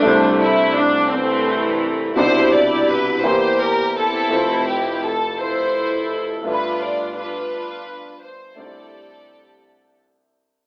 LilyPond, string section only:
\new Staff \with { instrumentName = "String section" } { \time 6/8 \key c \major \tempo 4. = 56 << { d'8 e'8 d'8 c'4 r8 | c''8 d''8 b'8 c''8 bes'8 a'8~ | a'8 g'8 a'8 c''4 r8 | b'8 d''8 b'4. c''8 |
d''2 r4 | } \\ { <g a>4 r8 <e a>4. | <e' g'>4. g'4 <c' e'>8~ | <c' e'>4 r8 <e' a'>4. | <d' f'>4 <d' f'>4. r8 |
<g' a'>2 r4 | } >> }